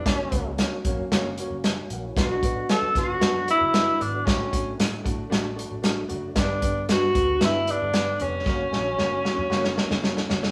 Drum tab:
HH |x-x-x-x-x-x-x-x-|x-x-x-x-x-x-x-x-|x-x-x-x-x-x-x-x-|x-x-x-x-x-x-x-x-|
SD |o---o---o---o---|o---o-o-o---o---|o---o---o---o---|o---o---o---o---|
BD |o-o---o---------|o-o---o---------|o-o---o---------|o-o---o---------|

HH |----------------|
SD |o-o-o-o-oooooooo|
BD |o---------------|